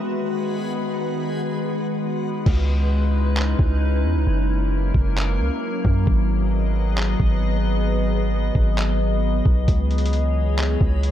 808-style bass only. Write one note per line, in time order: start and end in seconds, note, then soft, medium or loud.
2.46 3.55 C#2 loud
3.59 4.06 C#2 loud
4.04 4.17 E2 loud
4.15 4.26 C#2 loud
4.27 4.92 F#1 loud
4.94 5.41 F#1 loud
5.40 5.50 C#2 loud
5.85 6.06 F#2 loud
6.07 7.16 G#1 loud
7.20 8.51 G#1 loud
8.55 9.42 G#1 loud
9.46 9.67 B1 loud
9.68 10.77 C#2 loud
10.81 11.11 C#2 loud